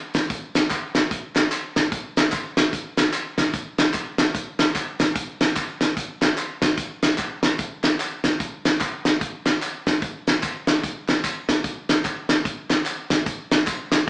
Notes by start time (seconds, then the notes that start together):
0.14 kick, snare, closed hi-hat, tambourine
0.30 kick, closed hi-hat, tambourine
0.55 snare, closed hi-hat, tambourine
0.70 kick, clap, closed hi-hat, tambourine
0.95 snare, closed hi-hat, tambourine
1.11 kick, closed hi-hat, tambourine
1.35 snare, clap, closed hi-hat, tambourine
1.52 clap, closed hi-hat, tambourine
1.76 kick, snare, closed hi-hat, tambourine
1.92 kick, closed hi-hat, tambourine
2.16 snare, closed hi-hat, tambourine
2.32 kick, clap, closed hi-hat, tambourine
2.57 snare, closed hi-hat, tambourine
2.73 kick, closed hi-hat, tambourine
2.97 snare, clap, closed hi-hat, tambourine
3.13 clap, closed hi-hat, tambourine
3.38 kick, snare, closed hi-hat, tambourine
3.53 kick, closed hi-hat, tambourine
3.78 snare, closed hi-hat, tambourine
3.94 kick, clap, closed hi-hat, tambourine
4.18 snare, closed hi-hat, tambourine
4.35 kick, closed hi-hat, tambourine
4.59 snare, clap, closed hi-hat, tambourine
4.75 kick, clap, closed hi-hat, tambourine
4.99 kick, snare, closed hi-hat, tambourine
5.15 kick, closed hi-hat, tambourine
5.41 snare, closed hi-hat, tambourine
5.56 kick, clap, closed hi-hat, tambourine
5.81 snare, closed hi-hat, tambourine
5.97 kick, closed hi-hat, tambourine
6.21 snare, clap, closed hi-hat, tambourine
6.38 clap, closed hi-hat, tambourine
6.62 kick, snare, closed hi-hat, tambourine
6.77 kick, closed hi-hat, tambourine
7.02 snare, closed hi-hat, tambourine
7.18 kick, clap, closed hi-hat, tambourine
7.43 snare, closed hi-hat, tambourine
7.58 kick, closed hi-hat, tambourine
7.83 snare, clap, closed hi-hat, tambourine
8.00 clap, closed hi-hat, tambourine
8.24 kick, snare, closed hi-hat, tambourine
8.40 kick, closed hi-hat, tambourine
8.65 snare, closed hi-hat, tambourine
8.80 kick, clap, closed hi-hat, tambourine
9.05 snare, closed hi-hat, tambourine
9.21 kick, closed hi-hat, tambourine
9.46 snare, clap, closed hi-hat, tambourine
9.62 clap, closed hi-hat, tambourine
9.86 kick, snare, closed hi-hat, tambourine
10.02 kick, closed hi-hat, tambourine
10.27 snare, closed hi-hat, tambourine
10.43 kick, clap, closed hi-hat, tambourine
10.67 snare, closed hi-hat, tambourine
10.83 kick, closed hi-hat, tambourine
11.08 snare, clap, closed hi-hat, tambourine
11.24 kick, clap, closed hi-hat, tambourine
11.49 kick, snare, closed hi-hat, tambourine
11.64 kick, closed hi-hat, tambourine
11.89 snare, closed hi-hat, tambourine
12.05 kick, clap, closed hi-hat, tambourine
12.29 snare, closed hi-hat, tambourine
12.45 kick, closed hi-hat, tambourine
12.70 snare, clap, closed hi-hat, tambourine
12.86 clap, closed hi-hat, tambourine
13.10 kick, snare, closed hi-hat, tambourine
13.26 kick, closed hi-hat, tambourine
13.51 snare, closed hi-hat, tambourine
13.67 kick, clap, closed hi-hat, tambourine
13.92 snare, closed hi-hat, tambourine